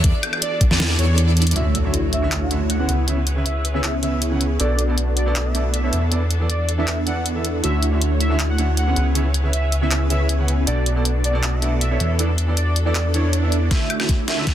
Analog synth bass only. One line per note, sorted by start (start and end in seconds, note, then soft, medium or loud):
0.04 0.13 E2 loud
0.71 0.78 E2 loud
0.80 0.97 E2 medium
0.99 1.54 E2 loud
1.56 2.87 D2 medium
2.89 4.58 C#2 medium
4.60 5.91 B1 medium
5.93 7.62 E2 medium
7.64 8.95 D2 medium
8.96 10.65 C#2 medium
10.67 11.98 B1 medium
12.00 13.69 E2 medium